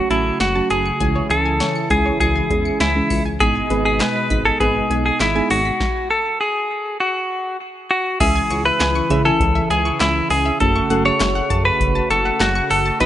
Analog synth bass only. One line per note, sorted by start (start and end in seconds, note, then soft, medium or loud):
0.10 0.31 A1 medium
0.40 0.61 F#1 loud
0.70 0.91 F#1 loud
1.00 1.21 C#2 loud
1.30 1.62 C#2 loud
1.90 2.11 C#2 loud
2.20 2.41 C#2 loud
2.50 2.71 E2 medium
2.80 3.01 C#2 loud
3.10 3.42 C#2 loud
3.41 3.61 G#1 loud
3.70 4.02 G#1 loud
4.30 4.51 G#1 loud
4.60 4.81 G#1 loud
4.90 5.11 B1 medium
5.20 5.41 G#1 loud
5.50 5.71 G#1 loud
8.21 8.41 C#2 loud
8.50 8.71 C#2 loud
8.80 9.01 C#2 loud
9.10 9.31 C#3 loud
9.40 9.61 C#2 loud
9.70 9.91 C#2 loud
10.01 10.21 C#2 loud
10.30 10.51 C#2 loud
10.60 10.81 F#1 loud
10.90 11.11 F#1 loud
11.21 11.41 F#1 loud
11.51 11.71 F#2 loud
11.80 12.01 F#1 loud
12.10 12.31 F#1 loud
12.40 12.61 F#1 loud
12.71 12.91 F#1 loud
13.01 13.06 B1 loud